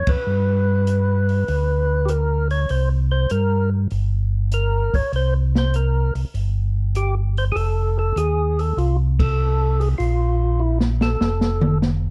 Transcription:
Already playing: tonewheel organ C#5
0.07 tonewheel organ F2 B4, kick, ride
0.27 tonewheel organ G2
0.87 closed hi-hat
1.29 open hi-hat
1.48 tonewheel organ D2, open hi-hat
2.05 tonewheel organ G4, closed hi-hat
2.09 tonewheel organ A#4
2.50 tonewheel organ C#5, open hi-hat
2.69 tonewheel organ C2 C5, open hi-hat
3.11 tonewheel organ C5
3.30 tonewheel organ G2 A#4, closed hi-hat
3.91 tonewheel organ G1, open hi-hat
4.52 tonewheel organ A#4, closed hi-hat
4.93 tonewheel organ G1 C#5, kick, open hi-hat
5.13 tonewheel organ C2 C5, open hi-hat
5.55 tonewheel organ C5, snare
5.74 tonewheel organ A#4, closed hi-hat
6.15 tonewheel organ C2, open hi-hat
6.34 tonewheel organ G1, open hi-hat
6.95 tonewheel organ G4, closed hi-hat
7.37 tonewheel organ C5, open hi-hat
7.52 tonewheel organ F1 G#4 A4
7.56 open hi-hat
7.99 tonewheel organ A4
8.16 tonewheel organ D#2 G#4, closed hi-hat
8.59 tonewheel organ A4, open hi-hat
8.77 tonewheel organ C2 F4, open hi-hat
9.19 tonewheel organ A4, kick, ride
9.80 tonewheel organ G#4, open hi-hat
9.98 tonewheel organ A#1 F4, open hi-hat
10.60 tonewheel organ E4
10.80 snare
11.01 tonewheel organ A4, snare
11.21 tonewheel organ F1, snare
11.41 snare
11.61 mid tom
11.82 snare

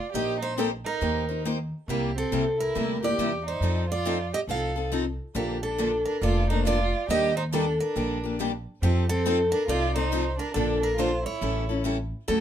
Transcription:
Already playing: violin F4, steel-string acoustic guitar D5
0.13 upright bass A#1, steel-string acoustic guitar A#3 D#4 G4 C5 D#5, violin G4
0.40 violin D#4, steel-string acoustic guitar C5
0.56 steel-string acoustic guitar A#3 D#4 G4 A4 C5, violin C4
0.85 violin D#4, steel-string acoustic guitar A#4
1.01 upright bass D#2, steel-string acoustic guitar A#3 D#4 G4 C5
1.29 steel-string acoustic guitar D#4 G4 C5
1.45 steel-string acoustic guitar A#3 D#4 G4 C5
1.88 upright bass C2, steel-string acoustic guitar C3 G3 A#3 E4 G4, violin A#3
2.15 violin C4, steel-string acoustic guitar A4
2.32 upright bass C2, steel-string acoustic guitar C3 G3 A#3 E4 G4
2.59 violin E4, steel-string acoustic guitar A#4
2.75 upright bass D2, steel-string acoustic guitar C3 G3 A#3 E4 G4
3.03 steel-string acoustic guitar A#3 E4 G4 D5, violin G4
3.18 upright bass E2, steel-string acoustic guitar C3 G3 A#3 E4 G4
3.46 violin D#4, steel-string acoustic guitar C5
3.60 upright bass F2, steel-string acoustic guitar F3 C4 D#4 A4
3.90 violin F4, steel-string acoustic guitar D5
4.06 steel-string acoustic guitar F3 C4 D#4 A4
4.33 violin G4, steel-string acoustic guitar D#5
4.47 upright bass C2, steel-string acoustic guitar F3 C4 D#4 A4 F5, violin A4
4.76 steel-string acoustic guitar C4 D#4 A4
4.92 steel-string acoustic guitar F3 C4 D#4 A4
5.35 upright bass A#1, steel-string acoustic guitar D3 F3 A#3 D4 G4 A4, violin A#3
5.63 violin D4, steel-string acoustic guitar A4
5.78 steel-string acoustic guitar D3 F3 A#3 D4 A4
6.05 violin D4, steel-string acoustic guitar A#4
6.22 upright bass F1, steel-string acoustic guitar D3 F3 A#3 D4 A4 D5, violin F4
6.50 steel-string acoustic guitar A#3 D4 A4 C5, violin D#4
6.66 steel-string acoustic guitar D3 F3 A#3 D4 A4 D5, violin F4
7.08 upright bass D#2, steel-string acoustic guitar D#3 G3 A#3 D4 G4 D#5, violin G4
7.37 violin D#4, steel-string acoustic guitar C5
7.53 steel-string acoustic guitar D#3 G3 A#3 D4 G4 A4, violin D4
7.80 violin D4, steel-string acoustic guitar A#4
7.96 upright bass A#1, steel-string acoustic guitar D#3 G3 A#3 D4 G4
8.24 steel-string acoustic guitar A#3 D4 G4
8.40 steel-string acoustic guitar D#3 G3 A#3 D4 G4
8.82 upright bass F2, steel-string acoustic guitar F3 C4 D#4 G4 A4, violin C4
9.09 violin C4, steel-string acoustic guitar A4
9.26 steel-string acoustic guitar F3 C4 D#4 A4
9.52 violin D4, steel-string acoustic guitar A#4
9.68 upright bass C2, steel-string acoustic guitar F3 C4 D#4 A4 D5, violin F4
9.96 steel-string acoustic guitar C4 D#4 A4 C5, violin D#4
10.12 steel-string acoustic guitar F3 C4 D#4 A4
10.39 violin D4, steel-string acoustic guitar A#4
10.54 upright bass A#1, steel-string acoustic guitar D3 F3 A#3 D4 A4, violin D4
10.81 violin D4, steel-string acoustic guitar A#4
10.97 steel-string acoustic guitar D3 F3 A#3 D4 A4 C5, violin F4
11.25 violin E4, steel-string acoustic guitar C#5
11.41 upright bass A1, steel-string acoustic guitar E3 G3 C#4 E4 A4
11.69 steel-string acoustic guitar C#4 E4 A4
11.84 steel-string acoustic guitar E3 G3 C#4 E4 A4
12.28 upright bass D2, steel-string acoustic guitar D3 F#3 A3 C#4 F#4 A4

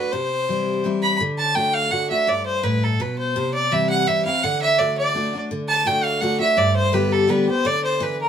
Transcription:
Already playing: steel-string acoustic guitar D4 F#4, fiddle B4
0.12 steel-string acoustic guitar C3, fiddle C5
0.48 steel-string acoustic guitar E3 G3 C4 E4
0.84 steel-string acoustic guitar E3 G3 C4 E4
1.02 fiddle B5
1.20 steel-string acoustic guitar D3
1.38 fiddle A5
1.55 steel-string acoustic guitar D3 A3 D4 F#4, fiddle G5
1.73 fiddle F5
1.91 steel-string acoustic guitar D3 A3 D4 F#4, fiddle F#5
2.10 steel-string acoustic guitar D4 F#4, fiddle E5
2.27 steel-string acoustic guitar G2, fiddle D5
2.46 fiddle C5
2.63 steel-string acoustic guitar A2, fiddle B4
2.83 fiddle A4
3.00 steel-string acoustic guitar B2, fiddle B4
3.19 fiddle C5
3.36 steel-string acoustic guitar C3, fiddle C5
3.54 fiddle D5
3.71 steel-string acoustic guitar E3 G3 C4 E4, fiddle E5
3.90 fiddle F#5
4.07 steel-string acoustic guitar E3 G3 C4 E4, fiddle E5
4.25 steel-string acoustic guitar C4 E4, fiddle F5
4.43 steel-string acoustic guitar D3, fiddle F#5
4.62 fiddle E5
4.78 steel-string acoustic guitar D3 A3 D4 F#4, fiddle D5
4.97 fiddle D5
5.14 steel-string acoustic guitar D3 A3 D4 F#4
5.33 steel-string acoustic guitar D4 F#4
5.51 steel-string acoustic guitar D3
5.68 fiddle A5
5.85 steel-string acoustic guitar D3 A3 D4 F#4, fiddle G5
6.03 fiddle F5
6.21 steel-string acoustic guitar D3 A3 D4 F#4, fiddle F#5
6.39 steel-string acoustic guitar D4 F#4, fiddle E5
6.57 steel-string acoustic guitar G2, fiddle D5
6.76 fiddle C5
6.92 steel-string acoustic guitar D3 G3 B3 G4, fiddle B4
7.12 fiddle A4
7.27 steel-string acoustic guitar D3 G3 B3 G4, fiddle B4
7.47 steel-string acoustic guitar B3 G4, fiddle C5
7.65 steel-string acoustic guitar D3, fiddle D5
7.85 fiddle C5
8.00 steel-string acoustic guitar E3, fiddle B4
8.22 fiddle A#4

